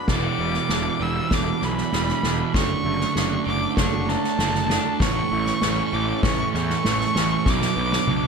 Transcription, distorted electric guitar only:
0.09 E2 B2 E3
0.69 E2 B2 E3
1.00 E2 B2 E3
1.30 E2 B2 E3
1.92 E2 B2 E3
2.23 E2 B2 E3
2.54 D3 A3 D4
3.15 D3 A3 D4
3.46 D3 A3 D4
3.76 D3 A3 D4
4.39 D3 A3 D4
4.69 D3 A3 D4
5.00 A2 E3 A3
5.62 A2 E3 A3
5.93 A2 E3 A3
6.23 A2 E3 A3
6.84 A2 E3 A3
7.15 A2 E3 A3
7.46 B2 F#3 B3
8.07 B2 F#3 B3

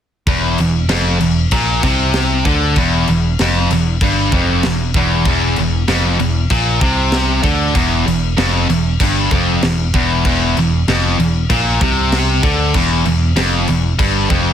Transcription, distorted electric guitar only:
0.28 E2
0.60 E2
0.89 F2
1.20 E2
1.53 A#2
1.84 C3
2.46 D3
2.78 E2
3.10 E2
3.41 F2
3.72 E2
4.03 G2
4.33 F2
4.66 E2
4.97 E2
5.28 E2
5.59 E2
5.89 F2
6.19 E2
6.51 A#2
6.82 C3
7.43 D3
7.74 E2
8.07 E2
8.38 F2
8.69 E2
9.01 G2
9.32 F2
9.63 E2
9.95 E2
10.26 E2
10.59 E2
10.89 F2
11.19 E2
11.50 A#2
11.82 C3
12.44 D3
12.75 E2
13.06 E2
13.36 F2
13.69 E2
13.99 G2
14.30 F2

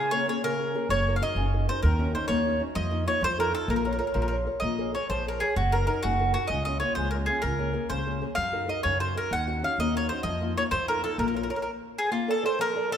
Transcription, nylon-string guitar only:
Already playing: C#3
0.12 A#3 C#4 G#4
0.28 A#3 C#4 G#4
0.44 C#3
0.59 A#3 C#4 G#4
0.74 A#3 C#4 G#4
0.91 F#3
1.07 D#4 F#4 A#4
1.21 D#4 F#4 A#4
1.36 C#3
1.53 D#4 F#4 A#4
1.69 D#4 F#4 A#4
1.84 D#3
1.99 C#4 D#4 F#4
2.15 C#4 D#4 F#4
2.29 A#3
2.45 C#4 D#4 F#4
2.59 C#4 D#4 F#4
2.75 F3
2.91 A#3 D#4 F4
3.06 A#3 D#4 F4
3.21 F3
3.37 D#4 F4 A4
3.52 D#4 F4 A4
3.69 A#3
3.85 F4 A#4 C#5
3.99 F4 A#4 C#5
4.14 F3
4.31 F4 A#4 C#5
4.46 F4 A#4 C#5
4.62 A#3
4.78 G#4 A#4 C#5
4.95 G#4 A#4 C#5
5.10 F3
5.27 G#4 A#4 C#5
5.41 G#4 A#4 C#5
5.57 F#3
5.72 D#4 F#4 A#4
5.87 D#4 F#4 A#4
6.03 C#3
6.19 D#4 F#4 A#4
6.34 D#4 F#4 A#4
6.49 C#3
6.66 A#3 C#4 F4
6.81 A#3 C#4 F4
6.97 G#3
7.13 A#3 C#4 F4
7.28 A#3 C#4 F4
7.43 C#3
7.58 A#3 C#4 G#4
7.73 A#3 C#4 G#4
7.89 C#3
8.06 A#3 C#4 G#4
8.21 A#3 C#4 G#4
8.37 F#3
8.52 D#4 F#4 A#4
8.67 D#4 F#4 A#4
8.83 C#3
9.00 D#4 F#4 A#4
9.16 D#4 F#4 A#4
9.30 D#3
9.47 C#4 D#4 F#4
9.62 C#4 D#4 F#4
9.80 A#3
9.94 C#4 D#4 F#4
10.11 C#4 D#4 F#4
10.25 F3
10.41 A#3 D#4 F4
10.57 A#3 D#4 F4
10.72 F3
10.88 D#4 F4 A4
11.03 D#4 F4 A4
11.18 A#3
11.34 F4 A#4 C#5
11.49 F4 A#4 C#5
12.11 A#3
12.28 A4 A#4 D5
12.43 A4 A#4 D5
12.59 F3
12.75 A4 A#4 D5
12.91 A4 A#4 D5

